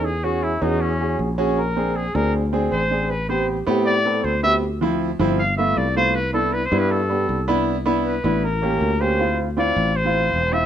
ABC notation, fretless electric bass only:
X:1
M:4/4
L:1/8
Q:1/4=158
K:Ddor
V:1 name="Fretless electric bass" clef=bass
E,,3 E,,3 _B,,,2- | _B,,,3 D,,3 A,,,2- | A,,,3 A,,3 D,,2- | D,,3 G,,,3 C,,2- |
C,,3 G,,3 C,,2- | C,,3 A,,,3 D,,2- | D,,3 A,,,3 E,,,2 |]